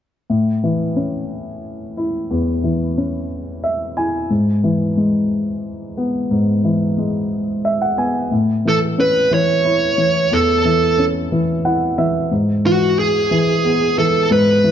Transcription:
0.30 A2
0.64 E3
0.96 C#4
1.97 E4
2.30 E2
2.64 E3
2.98 C#4
3.64 E5
3.97 E4 G#5
4.30 G#2
4.64 E3
4.97 G#3
5.97 B3
6.31 G#2
6.64 E3
6.98 G#3
7.65 E5
7.82 F#5
7.98 B3 G#5
8.31 A2
8.65 E3 A4
8.98 C#4 B4
9.31 E3 C#5
9.65 E4
9.98 E3
10.31 E2 A4
10.65 E3
10.98 C#4
11.32 E3
11.65 E4 F#5
11.98 E3 E5
12.31 G#2
12.65 E3 F#4
12.99 G#4
13.31 E3
13.65 B3
13.98 E3 A4
14.31 G#2 B4
14.64 E3

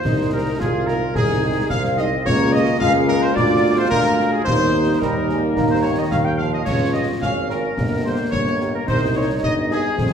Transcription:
Already playing: C5
0.04 C2 D#4, concert bass drum, snare, crash
0.31 G#3 C4 D#4 A#4
0.58 C2 F4 G#4, concert bass drum, snare
0.87 G#3 C4 D#4 A#4, snare
1.14 C2 D#4 G#4, concert bass drum, snare
1.42 G#3 C4 D#4
1.69 C2 C4 F5, concert bass drum, snare
1.85 snare
1.97 G#3 C4 D#4 D#5, snare
2.24 C#2 G#3 A#3 F4 C#5, concert bass drum, snare, crash
2.52 D#5
2.79 C#2 G#3 A#3 F4 F5, concert bass drum, snare
3.07 A#4, snare
3.22 C5
3.34 D2 G#3 A#3 F4 D5, concert bass drum, snare
3.77 C5
3.89 D2 G#3 A#3 F4 A#4, concert bass drum, snare
4.06 snare
4.20 snare
4.31 G#4
4.45 D#2 G3 A#3 D#4 C5, concert bass drum, snare, crash
4.99 D#2 G3 A#3 D#4 A#4, concert bass drum, snare
5.29 G#3, snare
5.57 D#2 A#3, concert bass drum, snare
5.69 C5
5.82 D#3 C#5
5.97 D#5
6.10 D#2 F5, concert bass drum, snare
6.23 G5
6.38 F3 F5
6.52 D#5
6.64 C#2 F4 C#5, concert bass drum, snare, crash
6.93 G#3 C4 F4 D#5
7.22 G#1 C#4 F5, concert bass drum, snare
7.48 G#3 C4 F4 A#4, snare
7.77 G1 A#3, concert bass drum, snare
8.04 G3 A#3 G4 C5
8.31 G1 C#5, concert bass drum, snare
8.47 snare
8.60 G3 A#3 G4, snare
8.73 A#4
8.87 C2 D#4 C5, concert bass drum, snare, crash
9.15 G3 A#3 D#4 C#5
9.42 G1 D#5, concert bass drum, snare
9.70 G3 A#3 D#4 G#4, snare
9.97 F2 C4, concert bass drum, snare

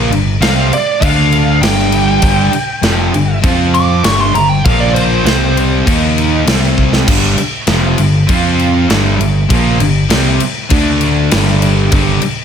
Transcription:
Already playing: A#2 F3 A#3
0.10 G1 G2 D3, crash
0.40 C2 C3 G3 C4 F5, snare, crash
0.71 D5, muted overdriven electric guitar stroke, muted picked electric bass stroke, muted distorted electric guitar stroke, crash
1.01 D2 D3 A3 D4 F5, kick, crash
1.32 crash
1.61 G1 G2 D3 G3 G5, snare, crash
1.78 snare
1.92 crash
2.21 G1 G2 D3 G3, kick, crash
2.52 muted distorted electric guitar stroke, muted overdriven electric guitar stroke, crash
2.82 F1 F2 C3 F3, snare, crash
3.12 G1 G2 D3, crash
3.42 F2 F3 C4 F4, kick, crash
3.74 D6, crash
4.04 G1 G2 D3 G3 C#6, snare, crash
4.20 C6
4.34 G1 G2 D3 A#5, crash
4.49 G5
4.64 A#1 A#2 F3 A#3 F5, kick, crash
4.80 D5
4.94 C5, crash
5.24 C2 C3 G3 C4 C5, snare, crash
5.57 crash
5.86 D#2 D#3 A#3 D#4, kick, crash
6.18 crash
6.46 C2 C3 G3 C4, snare, crash
6.64 snare
6.78 kick
6.93 snare
7.07 G1 G2 D3 G3, kick, crash
7.38 muted picked electric bass stroke, muted overdriven electric guitar stroke, muted distorted electric guitar stroke, crash
7.67 F1 F2 C3 F3, snare, crash
7.98 G1 G2 D3, crash
8.28 F2 F3 C4 F4, kick, crash
8.59 crash
8.89 G1 G2 D3 G3, snare, crash
9.19 G1 G2 D3, crash
9.49 A#1 A#2 F3 A#3, kick, crash
9.79 G1 G2 D3, crash
10.09 C2 C3 G3 C4, snare, crash
10.39 muted picked electric bass stroke, muted distorted electric guitar stroke, muted overdriven electric guitar stroke, crash
10.69 D2 D3 A3 D4, kick, crash
11.01 crash
11.31 G1 G2 D3 G3, snare, crash
11.48 snare
11.62 crash
11.91 G1 G2 D3 G3, kick, crash
12.22 muted overdriven electric guitar stroke, muted distorted electric guitar stroke, crash

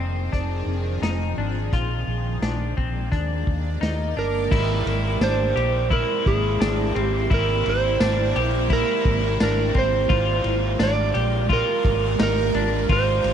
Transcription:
Already playing: F1 D#3 F3 C4 G#4
0.32 F1 D4, kick, closed hi-hat
0.66 F1
1.02 F1 D#4, snare, closed hi-hat
1.37 G#1 D4
1.72 A#1 A#3 F4 D5, kick, closed hi-hat
2.07 A#1
2.41 A#1 D4, snare, closed hi-hat
2.77 A#1 C4, kick
3.12 D#2 D4, kick, closed hi-hat
3.47 D#2, kick
3.81 D#2 D#4, snare, closed hi-hat
4.16 G1 D4 A#4
4.51 G#1 G#3 A#3 C4 E4 G4 D5, kick, crash
4.86 G#1, ride
5.20 G#1 A#3 D4 E4 G4 C5, snare, ride, tambourine
5.24 D5
5.56 A#1 G4, ride
5.89 G#3 A#3 E4 A#4, kick, ride
5.93 E4 D5
6.26 G#1 G#4, kick, ride
6.60 G#1 D4, snare, ride, tambourine
6.95 G#1 C4, ride
6.99 G4
7.30 G#1 G#3 A#3 E4 G4 D5, kick, ride
7.34 A#4
7.64 G#1 G4 D5, ride
7.69 E4 C5
8.00 G#1 A#3 D4 E4 G4, snare, ride, tambourine
8.04 D5
8.36 A#1 G4, ride
8.68 G#3 A#3 E4, kick, ride
8.72 E4 G4 A#4 D5
9.05 G#1, kick, ride
9.40 G#1 D4 A#4, snare, ride, tambourine
9.74 G#1 C4, kick, ride
9.79 C5
10.08 G#1 G#3 A#3 F4 A#4 D5, kick, ride
10.13 G4 D5
10.44 G#1, ride
10.79 G#1 D4 D5, snare, ride, tambourine
11.14 A#1 G4, ride
11.47 G#3 A#3 F4, kick, ride
11.51 F4 G4 A#4 D5
11.85 G#1, kick, ride
12.19 G#1 D#4 A#4, snare, ride, tambourine
12.54 G#1 D4, ride
12.89 G#1 G#3 A#3 D#4 F4 G4 C5, kick, ride
13.23 G#1 G4 C5, ride
13.27 D#4

